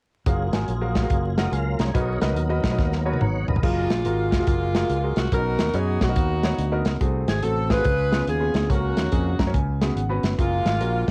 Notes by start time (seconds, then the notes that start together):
0.26 F#1 F#3 A#3 F4 F#4 G#4 A#4 F5, kick, closed hi-hat
0.53 G#1 F#4 G#4 A#4 G#5, snare, closed hi-hat
0.68 A#1, closed hi-hat
0.81 F#4 G#4 A#4 F5
0.95 kick, snare, closed hi-hat
1.03 F#4 G#4 A#4 F5
1.10 F#1, kick, closed hi-hat
1.38 F#4 G#4 A#4 D#5 F#5, snare, closed hi-hat
1.52 C#2 A#4 F5 G#5, closed hi-hat
1.79 C2 G#4 C#5 A#5, snare, closed hi-hat
1.94 B1 B2 F#3 B3 D#4 F#4 A#4 B4 D#5, kick, closed hi-hat
2.21 C#2 F#4 A#4 B4 D#5, snare, closed hi-hat
2.36 D#2, closed hi-hat
2.49 F#4 A#4 B4 D#5
2.64 B1, kick, snare, closed hi-hat
2.71 F#4 A#4 B4 D#5
2.78 D#2, kick, snare
2.92 snare
3.05 F#4 A#4 B4 C#5 D#5
3.13 high tom
3.20 G#1 C#5 F#5 A#5, mid tom
3.48 G1 A#4 D#5 B5, floor tom
3.56 floor tom
3.63 F#1 F#3 G#3 A#3 F4 G#4 A#4, kick, crash
3.90 A#1, snare, closed hi-hat
4.05 G#1 F4 F#4 G#4 A#4, closed hi-hat
4.32 F1, kick, snare, closed hi-hat
4.40 F4 F#4 G#4 A#4
4.47 F#1 G#3 A#3 F4, kick, closed hi-hat
4.75 F4 F#4 G#4 A#4, snare, closed hi-hat
4.89 C#2, closed hi-hat
5.04 F4 F#4 G#4 A#4
5.16 C2 F#4, snare, closed hi-hat
5.32 B1 B2 B3 C#4 D#4 F#4 A#4, kick, closed hi-hat
5.38 D#4
5.59 D#2, snare, closed hi-hat
5.74 F#2 B3 D#4 F#4 G#4 C#5, closed hi-hat
6.01 B1 A#3 D#4 F#4, kick, snare, closed hi-hat
6.08 B3 D#4 F#4 A#4
6.16 D#2, kick, closed hi-hat
6.43 B3 D#4 F#4 C#5, snare, closed hi-hat
6.58 D2, closed hi-hat
6.72 B3 D#4 F#4 A#4
6.85 C#2, snare, closed hi-hat
7.00 C2 C3 A3 C4 F#4 G#4, kick, closed hi-hat
7.28 G#1 G#4, snare, closed hi-hat
7.43 A1 A3 C4 F#4 A4, closed hi-hat
7.70 F4 G#4 B4, kick, snare, closed hi-hat
7.77 A3 C4 F#4 G#4
7.84 C#2 C#3, kick, closed hi-hat
8.11 B3 C#4 F4 G#4, snare, closed hi-hat
8.27 D#2 B3 F4 G#4, closed hi-hat
8.40 B3 C#4 F4 G#4
8.54 D2, snare, closed hi-hat
8.69 C#2 C#3 A#3 C#4 F#4 A4, kick, closed hi-hat
8.75 A#4
8.97 D#2, snare, closed hi-hat
9.11 F2 A#3 C#4 F#4 G#4, kick, closed hi-hat
9.39 F#2 A#5, kick, snare, closed hi-hat
9.47 A#3 C#4 F#4 C#5
9.54 C#2 C#3 G#5, kick, closed hi-hat
9.81 B3 C#4 F#4 G#4, snare, closed hi-hat
9.96 G#1 F#5, closed hi-hat
10.09 B3 C#4 F#4 B4
10.23 G1, snare, closed hi-hat
10.38 F#1 F#3 G#3 A#3 F4 G#4, kick, closed hi-hat
10.65 G#1, snare, closed hi-hat
10.80 A#1 A#3 F4 F#4 A#4, closed hi-hat
11.08 B1